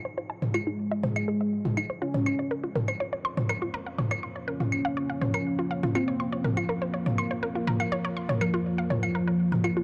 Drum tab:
CL |----x----x----x-|--x----x----x---|-x----x----x----|x----x----x----x|
T2 |---o----o----o--|-o----o----o----|o----o----o----o|----o----o----o-|

CL |----x----x----x-|
T2 |---o----o----o--|